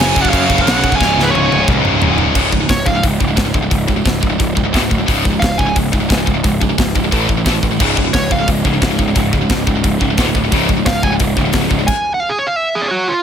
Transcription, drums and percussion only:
0.01 snare
0.16 kick, crash
0.25 kick
0.33 kick, crash
0.50 kick, crash
0.58 kick
0.67 snare, crash
0.84 kick, crash
0.92 kick
1.01 kick, snare
1.20 snare
1.35 high tom
1.52 high tom
1.68 kick, mid tom
1.85 mid tom
2.02 floor tom
2.18 floor tom
2.35 kick, crash
2.52 kick
2.69 kick, snare, open hi-hat
2.86 kick
3.03 kick, open hi-hat
3.20 kick
3.37 kick, snare, open hi-hat
3.54 kick
3.71 kick, open hi-hat
3.88 kick
4.06 kick, snare, open hi-hat
4.23 kick
4.40 kick, open hi-hat
4.57 kick
4.74 kick, snare, open hi-hat
4.91 kick
5.08 kick, open hi-hat
5.25 kick
5.42 kick, snare, open hi-hat
5.59 kick
5.76 kick, open hi-hat
5.93 kick
6.10 kick, snare, open hi-hat
6.27 kick
6.44 kick, open hi-hat
6.61 kick
6.78 kick, snare, open hi-hat
6.96 kick
7.12 kick, open hi-hat
7.29 kick
7.46 kick, snare, open hi-hat
7.63 kick
7.80 kick, crash
7.97 kick
8.14 kick, snare, open hi-hat
8.31 kick
8.48 kick, open hi-hat
8.65 kick
8.82 kick, snare, open hi-hat
8.99 kick
9.16 kick, open hi-hat
9.33 kick
9.50 kick, snare, open hi-hat
9.67 kick
9.84 kick, open hi-hat
10.01 kick
10.18 kick, snare, open hi-hat
10.35 kick
10.52 kick, open hi-hat
10.69 kick
10.86 kick, snare, open hi-hat
11.03 kick
11.20 kick, open hi-hat
11.37 kick
11.53 kick, snare, open hi-hat
11.71 kick
11.88 kick, crash

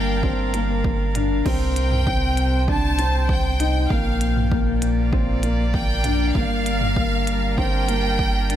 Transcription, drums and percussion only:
0.23 kick
0.54 closed hi-hat
0.84 kick
1.15 closed hi-hat, mid tom
1.46 kick, crash
1.76 closed hi-hat
1.91 mid tom
2.07 kick
2.37 closed hi-hat
2.68 kick
2.99 closed hi-hat
3.29 kick
3.60 closed hi-hat
3.90 kick
4.21 closed hi-hat
4.36 mid tom
4.52 kick
4.82 closed hi-hat
5.13 kick
5.43 closed hi-hat
5.74 kick
6.04 closed hi-hat, mid tom
6.35 kick
6.66 closed hi-hat
6.81 mid tom
6.96 kick
7.27 closed hi-hat
7.58 kick
7.89 closed hi-hat
8.19 kick
8.50 closed hi-hat

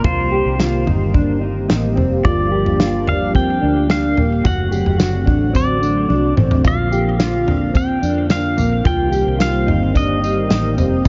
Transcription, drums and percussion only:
0.04 kick, floor tom
0.60 snare
0.87 floor tom
1.14 kick, floor tom
1.70 snare
1.97 floor tom
2.25 kick, floor tom
2.66 floor tom
2.80 snare
3.07 floor tom
3.35 kick, floor tom
3.90 snare
4.17 floor tom
4.45 kick, floor tom, tambourine
4.72 tambourine
4.86 floor tom
5.00 snare, tambourine
5.27 kick, floor tom
5.55 kick, floor tom, tambourine
5.83 tambourine
6.10 high tom
6.37 mid tom
6.51 floor tom
6.65 kick, floor tom, tambourine
6.92 tambourine
7.20 snare, tambourine
7.48 floor tom
7.75 kick, floor tom, tambourine
8.03 tambourine
8.30 snare, tambourine
8.58 floor tom, tambourine
8.85 kick, floor tom, tambourine
9.13 tambourine
9.40 snare, tambourine
9.68 floor tom
9.95 kick, floor tom, tambourine
10.24 tambourine
10.50 snare, tambourine
10.78 floor tom, tambourine

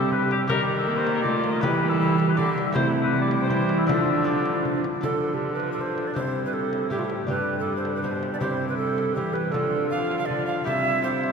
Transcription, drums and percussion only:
0.12 frame drum
0.31 frame drum
0.49 frame drum
1.07 frame drum
1.25 frame drum
1.44 frame drum
1.63 frame drum
2.20 frame drum
2.39 frame drum
2.58 frame drum
2.76 frame drum
3.31 frame drum
3.50 frame drum
3.69 frame drum
3.89 frame drum
4.46 frame drum
4.65 frame drum
4.84 frame drum
5.03 frame drum
5.60 frame drum
5.79 frame drum
5.98 frame drum
6.16 frame drum
6.73 frame drum
6.91 frame drum
7.10 frame drum
7.28 frame drum
7.85 frame drum
8.04 frame drum
8.23 frame drum
8.41 frame drum
8.98 frame drum
9.17 frame drum
9.35 frame drum
9.54 frame drum
10.11 frame drum
10.30 frame drum
10.49 frame drum
10.67 frame drum
11.24 frame drum

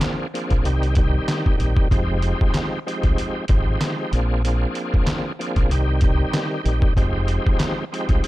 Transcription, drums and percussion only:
0.01 snare, clap, closed hi-hat
0.35 closed hi-hat
0.50 kick, closed hi-hat
0.65 closed hi-hat
0.83 closed hi-hat
0.95 kick, closed hi-hat
1.28 snare, clap, closed hi-hat
1.46 kick
1.60 closed hi-hat
1.77 kick
1.91 kick, closed hi-hat
2.22 closed hi-hat
2.41 kick
2.54 snare, clap, closed hi-hat
2.88 closed hi-hat
3.03 kick, closed hi-hat
3.18 closed hi-hat
3.48 kick, closed hi-hat
3.81 snare, clap, closed hi-hat
4.13 closed hi-hat
4.45 closed hi-hat
4.75 closed hi-hat
4.94 kick
5.07 snare, clap, closed hi-hat
5.41 closed hi-hat
5.56 kick, closed hi-hat
5.71 closed hi-hat
6.01 kick, closed hi-hat
6.34 snare, clap, closed hi-hat
6.66 closed hi-hat
6.82 kick
6.97 kick, closed hi-hat
7.28 closed hi-hat
7.47 kick
7.60 snare, clap, closed hi-hat
7.94 closed hi-hat
8.09 kick, closed hi-hat
8.24 closed hi-hat

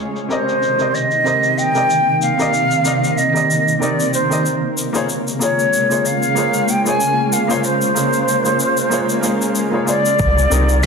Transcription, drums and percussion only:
0.16 shaker
0.31 shaker
0.49 shaker
0.63 shaker
0.79 shaker
0.95 shaker
1.11 shaker
1.26 shaker
1.43 shaker
1.58 shaker
1.75 shaker
1.90 shaker
2.22 shaker
2.40 shaker
2.54 shaker
2.71 shaker
2.85 shaker
3.04 shaker
3.18 shaker
3.36 shaker
3.51 shaker
3.68 shaker
3.82 shaker
4.00 shaker
4.14 shaker
4.32 shaker
4.46 shaker
4.78 shaker
4.95 shaker
5.09 shaker
5.28 shaker
5.42 shaker
5.59 shaker
5.73 shaker
5.91 shaker
6.06 shaker
6.23 shaker
6.37 shaker
6.54 shaker
6.69 shaker
6.86 shaker
7.01 shaker
7.33 shaker
7.50 shaker
7.64 shaker
7.82 shaker
7.97 shaker
8.13 shaker
8.28 shaker
8.45 shaker
8.60 shaker
8.77 shaker
8.92 shaker
9.09 shaker
9.24 shaker
9.42 shaker
9.55 shaker
9.88 shaker
10.06 shaker
10.19 kick, shaker
10.38 shaker
10.52 shaker
10.69 shaker
10.83 shaker

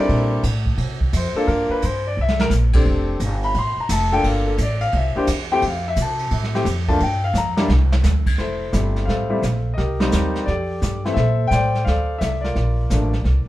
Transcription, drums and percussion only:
0.09 kick, ride
0.43 kick, hi-hat pedal, ride
0.66 kick
0.78 kick, ride
1.01 kick
1.13 kick, hi-hat pedal, ride
1.48 kick, ride
1.82 kick, hi-hat pedal, ride
2.28 snare
2.39 snare
2.50 snare, hi-hat pedal
2.73 kick, crash
3.20 kick, hi-hat pedal, ride
3.43 ride
3.54 kick, ride
3.89 kick, hi-hat pedal, ride
4.12 ride
4.24 kick, ride
4.58 kick, hi-hat pedal, ride
4.81 ride
4.92 kick, ride
5.27 kick, hi-hat pedal, ride
5.62 kick, ride
5.96 kick, hi-hat pedal, ride
6.19 ride
6.31 kick, ride
6.43 snare
6.55 snare
6.66 kick, hi-hat pedal, ride
6.88 kick, ride
7.00 kick, ride
7.35 snare, hi-hat pedal
7.57 snare
7.70 snare
7.92 snare
8.04 snare, hi-hat pedal
8.26 kick, crash
8.38 brush sweep, snare
8.73 kick, snare, hi-hat pedal
8.96 snare
9.08 brush sweep, kick, snare
9.43 kick, snare, hi-hat pedal
9.78 brush sweep, kick, snare
10.00 snare
10.12 kick, snare, hi-hat pedal
10.35 snare
10.47 brush sweep, kick, snare
10.82 kick, snare, hi-hat pedal
11.05 snare
11.16 brush sweep, kick, snare
11.51 kick, snare, hi-hat pedal
11.75 snare
11.86 brush sweep, kick, snare
12.21 kick, snare, hi-hat pedal
12.44 snare
12.56 brush sweep, kick, snare
12.90 kick, snare, hi-hat pedal
13.13 snare
13.25 brush sweep, kick, snare

